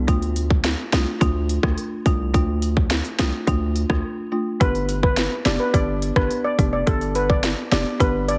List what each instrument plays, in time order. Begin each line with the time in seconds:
0.07 808-style bass D2, marimba A3 D4 F4, kick, closed hi-hat
0.22 closed hi-hat
0.36 closed hi-hat
0.50 kick
0.64 snare, closed hi-hat
0.92 808-style bass C2, marimba A3 D4 F4, snare, closed hi-hat
1.21 808-style bass D2, marimba A3 D4 F4, kick, closed hi-hat
1.49 closed hi-hat
1.63 808-style bass D2, marimba A3 D4 F4, kick, cross-stick
1.78 closed hi-hat
2.06 808-style bass C2, marimba A3 D4 F4, kick, closed hi-hat
2.34 808-style bass D2, marimba A3 D4 F4, kick, closed hi-hat
2.62 closed hi-hat
2.77 kick
2.91 snare, closed hi-hat
3.05 closed hi-hat
3.19 808-style bass C2, marimba A3 D4 F4, snare, closed hi-hat
3.47 808-style bass D2, marimba A3 D4 F4, kick, closed hi-hat
3.76 closed hi-hat
3.90 808-style bass D2, marimba A3 D4 F4, kick, cross-stick
4.32 marimba A3 D4 F4
4.60 808-style bass G1, marimba B3 D4 G4, steel pan B4, kick, closed hi-hat
4.75 closed hi-hat
4.89 closed hi-hat
5.03 steel pan B4, kick
5.17 snare, closed hi-hat
5.45 808-style bass F1, marimba B3 D4 G4, steel pan D5, snare, closed hi-hat
5.60 steel pan B4
5.74 808-style bass G1, marimba B3 D4 G4, steel pan D5, kick, closed hi-hat
6.02 closed hi-hat
6.16 808-style bass G1, marimba B3 D4 G4, steel pan B4, kick, cross-stick
6.31 closed hi-hat
6.44 steel pan D5
6.59 808-style bass F1, marimba B3 D4 G4, kick, closed hi-hat
6.73 steel pan D5
6.87 808-style bass G1, marimba B3 D4 G4, steel pan A4, kick, closed hi-hat
7.01 closed hi-hat
7.15 steel pan B4, closed hi-hat
7.30 steel pan D5, kick
7.44 snare, closed hi-hat
7.72 808-style bass F1, marimba B3 D4 G4, steel pan D5, snare, closed hi-hat
8.00 808-style bass G1, marimba B3 D4 G4, steel pan B4, kick, closed hi-hat
8.28 steel pan D5, closed hi-hat